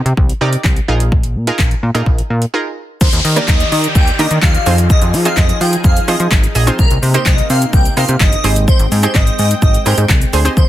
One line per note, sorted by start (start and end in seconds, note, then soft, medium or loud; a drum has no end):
0.00 0.10 A#4 medium
0.00 0.10 C5 medium
0.06 0.13 C3 loud
0.06 closed hi-hat medium
0.17 0.33 C2 loud
0.17 kick loud
0.29 closed hi-hat medium
0.41 0.56 C3 loud
0.41 0.63 D#4 medium
0.41 0.63 G4 medium
0.41 0.64 A#4 medium
0.41 0.64 D5 loud
0.53 closed hi-hat medium
0.64 0.80 C2 loud
0.64 kick loud
0.64 snare medium
0.64 clap loud
0.76 closed hi-hat medium
0.88 1.37 A#1 loud
0.88 1.36 D#4 medium
0.88 1.36 F4 medium
0.88 1.36 G#4 medium
0.88 1.36 A#4 loud
1.00 closed hi-hat medium
1.12 kick loud
1.23 closed hi-hat medium
1.36 1.51 A#2 loud
1.47 1.70 D#4 loud
1.47 1.70 F4 medium
1.47 1.70 G#4 medium
1.47 1.70 A#4 loud
1.47 closed hi-hat medium
1.58 1.75 A#1 medium
1.58 kick loud
1.58 snare medium
1.58 clap loud
1.71 closed hi-hat soft
1.83 1.91 A#2 loud
1.95 2.02 A#2 loud
1.95 2.22 D#4 medium
1.95 2.23 F4 medium
1.95 2.23 G#4 medium
1.95 2.23 A#4 loud
1.95 closed hi-hat medium
2.06 2.22 A#1 loud
2.06 kick loud
2.18 closed hi-hat medium
2.30 2.46 A#2 loud
2.42 closed hi-hat medium
2.54 2.76 D#4 medium
2.54 2.76 F4 medium
2.54 2.76 G#4 medium
2.54 2.76 A#4 medium
3.01 3.09 D#2 loud
3.01 4.65 D#3 medium
3.01 4.65 G4 medium
3.01 3.10 C5 loud
3.01 4.65 D5 medium
3.01 kick loud
3.01 crash loud
3.01 downlifter medium
3.01 shaker medium
3.13 3.21 D#2 loud
3.13 closed hi-hat medium
3.13 shaker medium
3.25 3.40 D#3 loud
3.25 open hi-hat medium
3.25 shaker medium
3.36 3.75 A#3 medium
3.36 3.75 D4 medium
3.36 3.75 D#4 medium
3.36 3.76 G4 medium
3.36 3.76 A#4 medium
3.36 3.46 D5 medium
3.36 closed hi-hat medium
3.36 shaker medium
3.48 3.64 D#2 loud
3.48 3.67 D#5 medium
3.48 kick loud
3.48 snare medium
3.48 clap loud
3.48 clap medium
3.48 shaker medium
3.60 closed hi-hat medium
3.60 shaker medium
3.72 3.87 D#3 loud
3.72 3.81 D#5 medium
3.72 open hi-hat medium
3.72 shaker medium
3.84 closed hi-hat medium
3.84 shaker medium
3.95 4.11 D#2 loud
3.95 4.14 G5 medium
3.95 kick loud
3.95 shaker medium
4.07 closed hi-hat medium
4.07 shaker medium
4.19 4.27 D#3 loud
4.19 4.41 A#3 medium
4.19 4.41 D4 medium
4.19 4.41 D#4 medium
4.19 4.42 G4 medium
4.19 4.42 A#4 medium
4.19 4.28 D#5 medium
4.19 open hi-hat medium
4.19 shaker medium
4.31 4.39 D#3 loud
4.31 closed hi-hat medium
4.31 shaker medium
4.42 4.58 D#2 medium
4.42 4.76 F5 medium
4.42 kick loud
4.42 snare medium
4.42 clap medium
4.42 clap loud
4.42 shaker medium
4.54 closed hi-hat medium
4.54 shaker medium
4.66 4.89 F2 loud
4.66 6.77 F3 medium
4.66 5.13 C4 medium
4.66 5.14 D#4 medium
4.66 8.41 D#4 medium
4.66 5.14 F4 medium
4.66 6.77 G#4 medium
4.66 5.14 G#4 medium
4.66 5.14 C5 medium
4.66 open hi-hat medium
4.66 shaker medium
4.78 closed hi-hat medium
4.78 shaker medium
4.90 4.99 D#5 loud
4.90 kick loud
4.90 shaker medium
5.02 5.15 F2 loud
5.02 closed hi-hat medium
5.02 shaker medium
5.14 5.29 F3 loud
5.14 open hi-hat medium
5.14 shaker medium
5.25 5.64 C4 medium
5.25 5.64 D#4 medium
5.25 5.64 F4 medium
5.25 5.65 G#4 medium
5.25 5.65 C5 medium
5.25 5.35 F5 medium
5.25 closed hi-hat medium
5.25 shaker medium
5.37 5.52 F2 loud
5.37 5.56 D#5 medium
5.37 kick loud
5.37 snare loud
5.37 clap loud
5.37 clap medium
5.37 shaker medium
5.49 closed hi-hat medium
5.49 shaker medium
5.61 5.76 F3 loud
5.61 5.70 G5 medium
5.61 open hi-hat medium
5.61 shaker medium
5.73 closed hi-hat medium
5.73 shaker medium
5.84 6.00 F2 loud
5.84 6.03 F5 medium
5.84 kick loud
5.84 shaker medium
5.97 closed hi-hat medium
5.97 shaker medium
6.08 6.16 F3 loud
6.08 6.30 C4 medium
6.08 6.30 D#4 medium
6.08 6.30 F4 medium
6.08 6.30 G#4 medium
6.08 6.30 C5 medium
6.08 6.17 D#5 medium
6.08 open hi-hat medium
6.08 shaker medium
6.20 6.28 F3 loud
6.20 closed hi-hat medium
6.20 shaker medium
6.31 6.47 G#1 medium
6.31 kick loud
6.31 snare loud
6.31 clap medium
6.31 clap loud
6.31 shaker medium
6.44 closed hi-hat medium
6.44 shaker medium
6.55 6.71 A#1 medium
6.55 6.61 G#4 medium
6.55 6.61 D#5 loud
6.55 open hi-hat medium
6.55 shaker medium
6.67 6.79 C4 medium
6.67 6.79 D#4 medium
6.67 6.79 F4 medium
6.67 6.79 G#4 medium
6.67 6.79 C5 medium
6.67 closed hi-hat medium
6.67 shaker medium
6.79 6.87 C2 loud
6.79 8.43 C3 medium
6.79 8.43 A#3 medium
6.79 6.88 A#4 loud
6.79 kick loud
6.79 shaker medium
6.91 6.98 C2 loud
6.91 closed hi-hat medium
6.91 shaker medium
7.03 7.18 C3 loud
7.03 open hi-hat medium
7.03 shaker medium
7.14 7.53 C4 medium
7.14 7.53 D#4 medium
7.14 7.53 G4 medium
7.14 7.53 A#4 medium
7.14 7.24 C5 medium
7.14 7.54 C5 medium
7.14 closed hi-hat medium
7.14 shaker medium
7.25 7.41 C2 medium
7.25 7.45 D#5 medium
7.25 kick loud
7.25 snare loud
7.25 clap loud
7.25 clap medium
7.25 shaker medium
7.38 closed hi-hat medium
7.38 shaker medium
7.50 7.65 C3 loud
7.50 7.59 F5 medium
7.50 open hi-hat medium
7.50 shaker medium
7.62 closed hi-hat medium
7.62 shaker medium
7.73 7.89 C2 loud
7.73 7.92 G5 medium
7.73 kick loud
7.73 shaker medium
7.85 closed hi-hat medium
7.85 shaker medium
7.97 8.05 C3 loud
7.97 8.19 C4 medium
7.97 8.19 D#4 medium
7.97 8.19 G4 medium
7.97 8.19 A#4 medium
7.97 8.19 C5 medium
7.97 8.06 F5 medium
7.97 open hi-hat medium
7.97 shaker medium
8.09 8.16 C3 loud
8.09 closed hi-hat medium
8.09 shaker medium
8.20 8.36 G1 medium
8.20 8.54 D#5 medium
8.20 kick loud
8.20 snare loud
8.20 clap medium
8.20 clap loud
8.20 shaker medium
8.32 closed hi-hat medium
8.32 shaker medium
8.44 8.67 G#1 loud
8.44 10.55 G#3 medium
8.44 8.91 C4 medium
8.44 10.55 C4 medium
8.44 8.91 D#4 medium
8.44 8.92 G4 medium
8.44 8.92 G#4 medium
8.44 8.92 C5 medium
8.44 10.55 G5 medium
8.44 open hi-hat medium
8.44 shaker medium
8.56 closed hi-hat medium
8.56 shaker medium
8.68 8.77 C5 loud
8.68 kick loud
8.68 shaker medium
8.79 8.87 G#1 loud
8.79 closed hi-hat medium
8.79 shaker medium
8.92 9.07 G#2 loud
8.92 open hi-hat medium
8.92 shaker medium
9.03 9.42 C4 medium
9.03 9.42 D#4 medium
9.03 9.42 G4 medium
9.03 9.42 G#4 medium
9.03 9.13 C5 medium
9.03 9.42 C5 medium
9.03 closed hi-hat medium
9.03 shaker medium
9.14 9.30 G#1 loud
9.14 9.34 D#5 medium
9.14 kick loud
9.14 snare medium
9.14 clap loud
9.14 clap medium
9.14 shaker medium
9.27 closed hi-hat medium
9.27 shaker medium
9.39 9.54 G#2 loud
9.39 9.48 D#5 medium
9.39 open hi-hat medium
9.39 shaker medium
9.51 closed hi-hat medium
9.51 shaker medium
9.62 9.78 G#1 loud
9.62 9.81 D#5 medium
9.62 kick loud
9.62 shaker medium
9.74 closed hi-hat medium
9.74 shaker medium
9.86 9.94 G#2 loud
9.86 10.08 C4 medium
9.86 10.08 D#4 medium
9.86 10.08 G4 medium
9.86 10.08 G#4 medium
9.86 10.08 A#4 medium
9.86 9.95 C5 medium
9.86 open hi-hat medium
9.86 shaker medium
9.98 10.05 G#2 medium
9.98 closed hi-hat medium
9.98 shaker medium
10.09 10.25 C2 medium
10.09 kick loud
10.09 snare medium
10.09 clap medium
10.09 clap loud
10.09 shaker medium
10.22 closed hi-hat medium
10.22 shaker medium
10.33 10.49 D2 loud
10.33 10.39 G#4 medium
10.33 10.39 C5 loud
10.33 open hi-hat medium
10.33 shaker medium
10.45 10.57 C4 medium
10.45 10.57 D#4 medium
10.45 10.57 G4 medium
10.45 10.57 G#4 medium
10.45 10.57 C5 medium
10.45 closed hi-hat medium
10.45 shaker medium
10.57 10.65 D#2 loud
10.57 10.69 D#3 medium
10.57 10.69 G4 medium
10.57 10.66 C5 loud
10.57 10.69 D5 medium
10.57 kick loud
10.57 shaker medium